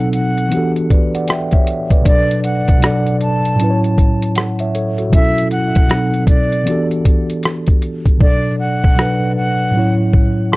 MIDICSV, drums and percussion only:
0, 0, Header, 1, 2, 480
1, 0, Start_track
1, 0, Tempo, 769231
1, 1280, Time_signature, 4, 2, 24, 8
1, 6593, End_track
2, 0, Start_track
2, 0, Title_t, "Drums"
2, 81, Note_on_c, 9, 42, 69
2, 143, Note_off_c, 9, 42, 0
2, 235, Note_on_c, 9, 42, 52
2, 297, Note_off_c, 9, 42, 0
2, 322, Note_on_c, 9, 42, 73
2, 384, Note_off_c, 9, 42, 0
2, 475, Note_on_c, 9, 42, 35
2, 538, Note_off_c, 9, 42, 0
2, 564, Note_on_c, 9, 36, 81
2, 565, Note_on_c, 9, 42, 63
2, 627, Note_off_c, 9, 36, 0
2, 628, Note_off_c, 9, 42, 0
2, 715, Note_on_c, 9, 42, 43
2, 778, Note_off_c, 9, 42, 0
2, 796, Note_on_c, 9, 42, 74
2, 812, Note_on_c, 9, 37, 105
2, 859, Note_off_c, 9, 42, 0
2, 874, Note_off_c, 9, 37, 0
2, 944, Note_on_c, 9, 42, 50
2, 952, Note_on_c, 9, 36, 90
2, 1007, Note_off_c, 9, 42, 0
2, 1014, Note_off_c, 9, 36, 0
2, 1042, Note_on_c, 9, 42, 63
2, 1104, Note_off_c, 9, 42, 0
2, 1188, Note_on_c, 9, 36, 86
2, 1189, Note_on_c, 9, 42, 40
2, 1251, Note_off_c, 9, 36, 0
2, 1251, Note_off_c, 9, 42, 0
2, 1282, Note_on_c, 9, 36, 112
2, 1284, Note_on_c, 9, 42, 81
2, 1344, Note_off_c, 9, 36, 0
2, 1346, Note_off_c, 9, 42, 0
2, 1441, Note_on_c, 9, 42, 53
2, 1504, Note_off_c, 9, 42, 0
2, 1521, Note_on_c, 9, 42, 55
2, 1584, Note_off_c, 9, 42, 0
2, 1671, Note_on_c, 9, 42, 41
2, 1676, Note_on_c, 9, 36, 90
2, 1734, Note_off_c, 9, 42, 0
2, 1738, Note_off_c, 9, 36, 0
2, 1762, Note_on_c, 9, 42, 75
2, 1771, Note_on_c, 9, 37, 113
2, 1824, Note_off_c, 9, 42, 0
2, 1833, Note_off_c, 9, 37, 0
2, 1913, Note_on_c, 9, 42, 39
2, 1975, Note_off_c, 9, 42, 0
2, 2001, Note_on_c, 9, 42, 65
2, 2064, Note_off_c, 9, 42, 0
2, 2154, Note_on_c, 9, 42, 50
2, 2216, Note_off_c, 9, 42, 0
2, 2244, Note_on_c, 9, 42, 72
2, 2306, Note_off_c, 9, 42, 0
2, 2397, Note_on_c, 9, 42, 36
2, 2460, Note_off_c, 9, 42, 0
2, 2483, Note_on_c, 9, 36, 76
2, 2486, Note_on_c, 9, 42, 63
2, 2546, Note_off_c, 9, 36, 0
2, 2549, Note_off_c, 9, 42, 0
2, 2635, Note_on_c, 9, 42, 49
2, 2698, Note_off_c, 9, 42, 0
2, 2717, Note_on_c, 9, 42, 74
2, 2732, Note_on_c, 9, 37, 108
2, 2779, Note_off_c, 9, 42, 0
2, 2794, Note_off_c, 9, 37, 0
2, 2864, Note_on_c, 9, 42, 47
2, 2926, Note_off_c, 9, 42, 0
2, 2963, Note_on_c, 9, 42, 66
2, 3025, Note_off_c, 9, 42, 0
2, 3108, Note_on_c, 9, 42, 47
2, 3171, Note_off_c, 9, 42, 0
2, 3199, Note_on_c, 9, 36, 111
2, 3202, Note_on_c, 9, 42, 75
2, 3262, Note_off_c, 9, 36, 0
2, 3264, Note_off_c, 9, 42, 0
2, 3357, Note_on_c, 9, 42, 52
2, 3420, Note_off_c, 9, 42, 0
2, 3438, Note_on_c, 9, 42, 58
2, 3501, Note_off_c, 9, 42, 0
2, 3589, Note_on_c, 9, 42, 43
2, 3594, Note_on_c, 9, 36, 86
2, 3652, Note_off_c, 9, 42, 0
2, 3656, Note_off_c, 9, 36, 0
2, 3678, Note_on_c, 9, 42, 68
2, 3686, Note_on_c, 9, 37, 113
2, 3740, Note_off_c, 9, 42, 0
2, 3749, Note_off_c, 9, 37, 0
2, 3829, Note_on_c, 9, 42, 38
2, 3892, Note_off_c, 9, 42, 0
2, 3912, Note_on_c, 9, 36, 107
2, 3915, Note_on_c, 9, 42, 68
2, 3975, Note_off_c, 9, 36, 0
2, 3978, Note_off_c, 9, 42, 0
2, 4070, Note_on_c, 9, 42, 52
2, 4133, Note_off_c, 9, 42, 0
2, 4160, Note_on_c, 9, 42, 77
2, 4223, Note_off_c, 9, 42, 0
2, 4313, Note_on_c, 9, 42, 33
2, 4375, Note_off_c, 9, 42, 0
2, 4401, Note_on_c, 9, 36, 82
2, 4401, Note_on_c, 9, 42, 60
2, 4463, Note_off_c, 9, 42, 0
2, 4464, Note_off_c, 9, 36, 0
2, 4553, Note_on_c, 9, 42, 47
2, 4616, Note_off_c, 9, 42, 0
2, 4636, Note_on_c, 9, 42, 75
2, 4652, Note_on_c, 9, 37, 105
2, 4699, Note_off_c, 9, 42, 0
2, 4714, Note_off_c, 9, 37, 0
2, 4783, Note_on_c, 9, 42, 46
2, 4791, Note_on_c, 9, 36, 92
2, 4846, Note_off_c, 9, 42, 0
2, 4853, Note_off_c, 9, 36, 0
2, 4880, Note_on_c, 9, 42, 65
2, 4942, Note_off_c, 9, 42, 0
2, 5026, Note_on_c, 9, 42, 43
2, 5027, Note_on_c, 9, 36, 75
2, 5089, Note_off_c, 9, 36, 0
2, 5089, Note_off_c, 9, 42, 0
2, 5120, Note_on_c, 9, 36, 117
2, 5183, Note_off_c, 9, 36, 0
2, 5516, Note_on_c, 9, 36, 91
2, 5578, Note_off_c, 9, 36, 0
2, 5609, Note_on_c, 9, 37, 104
2, 5671, Note_off_c, 9, 37, 0
2, 6324, Note_on_c, 9, 36, 78
2, 6386, Note_off_c, 9, 36, 0
2, 6572, Note_on_c, 9, 37, 114
2, 6593, Note_off_c, 9, 37, 0
2, 6593, End_track
0, 0, End_of_file